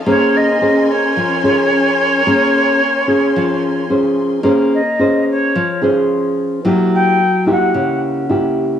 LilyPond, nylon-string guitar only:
\new Staff \with { instrumentName = "Nylon-string guitar" } { \time 4/4 \key bes \minor \tempo 4 = 109 << { <des' aes' c''>4 <des' aes' c''>4 r8 <des' aes'>4. | <des' aes'>4 r8 <des' aes'>4. <des' aes' c''>4 | <des' aes' c''>8 r8 <des' aes' c''>4 r8 <des' aes' c''>4. | <bes fes' g'>4 r8 <bes fes' g'>4. <bes fes' g'>4 | } \\ { bes2 f2 | bes2 f2 | bes2 f2 | ges2 des2 | } >> }